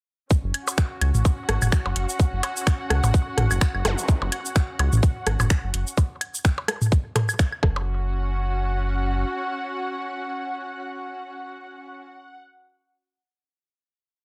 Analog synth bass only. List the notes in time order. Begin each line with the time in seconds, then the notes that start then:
0.44 F#1
1.02 C#2
1.15 A1
1.49 G#1
1.62 F#1
1.86 F#1
1.96 F#1
2.33 F#1
2.90 C#2
3.04 A1
3.38 G#1
3.51 F#1
3.75 F#1
3.85 F#1
4.22 F#1
4.79 C#2
4.93 A1
5.27 G#1
5.40 F#1
5.64 F#1
5.74 F#1
7.63 F#1